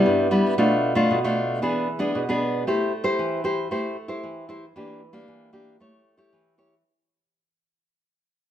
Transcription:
Already playing: G3 B3 E4
0.06 G2
0.31 G3 B3 E4
0.58 B2 A3 D4 F4
0.95 A3 D4 F4
1.11 B2
1.24 A3 D4 F4
1.62 E3 B3 D4 G#4
1.99 B3 D4 G#4
2.15 B2
2.29 B3 D4 G#4
2.67 A3 E4 G4 C5
3.04 E4 G4 C5
3.19 E3
3.44 E4 G4 C5
3.71 A3 E4 G4 C5
4.08 E4 G4 C5
4.23 E3
4.49 E4 G4 C5
4.76 E3 A#3 D4 G4
5.13 A#3 D4 G4
5.28 E3
5.53 A#3 D4 G4
5.80 A3 E4 G4 C#5
6.17 E4 G4 C#5
6.33 E3
6.58 E4 G4 C#5

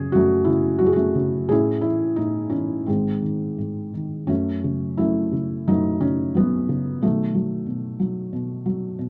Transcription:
Already playing: F#2 C#3 F#3 A3 C#4 G#4
0.12 F#2 A3 C#4 F#4
0.44 C#3 E4
0.79 F#2 F#4
0.86 G#4
0.93 A3 C#4 F#4
1.15 C#3
1.49 A2 C#4 E4 G#4
1.81 E3 E4
2.16 A2 D#4
2.50 E3 C#4
2.87 G#2 D#3 G#3 C4
3.22 D#3
3.58 G#2
3.94 D#3
4.27 F#2 F#3 A3 C#4
4.64 C#3
4.97 F#3 A3 C#4 E4
5.32 C#3
5.67 F#2 F#3 A3 D#4
6.00 C#3 C#4
6.35 F#3 B3
6.69 C#3
7.02 B2 D#3 F#3 A3
7.34 F#3
7.66 B2
8.00 F#3
8.33 B2
8.66 F#3
8.99 B2

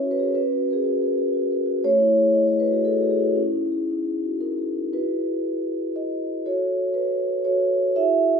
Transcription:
Already playing: C#4 C#5
0.03 F#4
0.11 B4
0.19 F#4 G#4
0.23 A#4
0.35 C#4 B4
0.52 F#4
0.70 G#4 A#4
0.85 F#4
1.02 A#4
1.18 G#4
1.34 F#4
1.51 A#4
1.66 F#4
1.84 A3 C#5
1.99 E4
2.17 G#4
2.34 E4 D#5
2.47 G#4 C#5
2.60 B4
2.68 F#4
2.73 G#4
2.85 E4 A4
2.97 F#4
3.02 G#4
3.10 G#4
3.19 E4
3.23 F#4
3.35 C#4 E4
3.54 D#4
3.72 G#4
3.90 D#4
4.07 G#4
4.23 F#4
4.41 D#4 A#4
4.58 G#4
4.75 D#4
4.93 E4 F#4 G#4 B4
5.96 D#5
6.46 F#4 A4 C#5
6.94 B4
7.45 F#4 A4 C#5
7.96 E4 F#4 G#4 E5

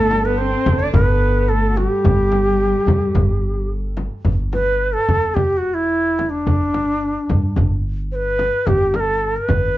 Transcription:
Already playing: G1 A3 A4 C5 D5 E5
0.06 A4
0.11 A4, tombak tek, frame drum
0.22 B3 A4 B4
0.38 C4 C5
0.66 G1, frame drum, tombak dum
0.79 D4 D5
0.87 C5
0.93 G1 B3 A#4 B4, frame drum, tombak dum
1.04 B4
1.36 tombak ka
1.49 A3 A4
1.70 F#4
1.77 G3 F#4 G4, tombak tek, frame drum
1.88 G4
2.04 G1, frame drum, tombak dum
2.19 tombak ka
2.32 tombak tek, frame drum
2.86 G2, tombak dum, frame drum
3.02 tombak ka
3.15 G1, tombak dum, frame drum
3.56 tombak ka
3.97 tombak tek, frame drum
4.25 G1, frame drum, tombak dum
4.53 B4, tombak tek, frame drum
4.81 tombak ka
4.93 A4
5.09 G1, frame drum, tombak dum
5.22 tombak ka
5.34 E1 G4, tombak dum, frame drum
5.57 F#4
5.74 E4
6.19 tombak tek, frame drum
6.30 D4
6.47 G1, frame drum, tombak dum
6.74 tombak tek, frame drum
7.02 tombak ka
7.29 G2, frame drum, tombak dum
7.44 tombak ka
7.56 G1, frame drum, tombak dum
8.12 B4 C5
8.39 tombak tek, frame drum
8.67 G1 G4, frame drum, tombak dum
8.94 A#4, tombak tek, frame drum
9.00 A4
9.22 tombak ka
9.37 B4
9.49 G1, frame drum, tombak dum
9.63 tombak ka

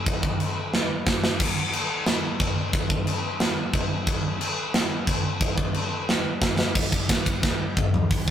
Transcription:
0.06 kick, china
0.23 kick
0.40 china
0.74 snare
1.07 kick, snare
1.24 snare
1.40 kick, china, crash
1.73 china
2.06 snare, china
2.40 kick, china
2.73 kick, china
2.90 kick
3.07 china
3.40 snare, china
3.74 kick, china
4.07 kick, china
4.41 china
4.74 snare, china
5.07 kick, china
5.41 kick, china
5.58 kick
5.74 china
6.09 snare
6.42 kick, snare
6.59 snare
6.75 kick, crash
6.92 kick, ride
7.09 kick, snare, ride
7.26 kick, ride
7.43 kick, snare
7.77 kick, mid tom
7.94 floor tom
8.11 kick, open hi-hat

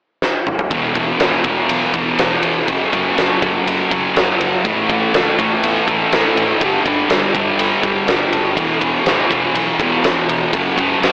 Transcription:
0.22 snare
0.47 mid tom
0.59 floor tom
0.70 E1 E2 B2 E3, kick, ride
0.95 E1 E3, kick, ride
0.99 B2
1.19 G#1 E2 B2 E3, snare, ride
1.44 E1 B2 E3, kick, ride
1.69 B1, ride
1.94 E1 B2 E3, kick, ride
2.18 E1 E2 B2 E3, snare, ride
2.43 E1, ride
2.67 F#1 F#2 C#3 F#3, kick, ride
2.92 F#1 C#3 F#3, kick, ride
3.16 F#1 F#2 C#3 F#3, snare, ride
3.41 F#1 C#3 F#3, kick, ride
3.66 F#1, ride
3.90 F#1 C#3 F#3, kick, ride
4.15 F#1 F#2 C#3 F#3, snare, ride
4.40 F#1, ride
4.64 A1 A2 E3 A3, kick, ride
4.89 A1 E3 A3, kick, ride
5.14 C#2 A2 E3 A3, snare, ride
5.38 A1 E3 A3, kick, ride
5.63 E2, ride
5.87 A1 E3 A3, kick, ride
6.12 A1 A2 E3 A3, snare, ride
6.36 A1, ride
6.61 G1 G2 D3 G3, kick, ride
6.85 G1 D3 G3, kick, ride
7.10 G1 G2 D3 G3, snare, ride
7.34 G1 D3 G3, kick, ride
7.58 G1, ride
7.83 G1 D3 G3, kick, ride
8.07 G1 G2 D3 G3, snare, ride
8.32 F#1, ride
8.56 E1 E2 B2 E3, kick, ride
8.80 E1 B2 E3, kick, ride
9.05 G#1 E2 B2 E3, snare, ride
9.29 E1 B2 E3, kick, ride
9.55 B1, ride
9.79 E1 B2 E3, kick, ride
10.03 E1 E2 B2 E3, snare, ride
10.29 E1, ride
10.53 F#1 F#2 C#3 F#3, kick, ride
10.76 F#1 C#3 F#3, kick, ride
11.01 F#1 F#2 C#3 F#3, snare, ride

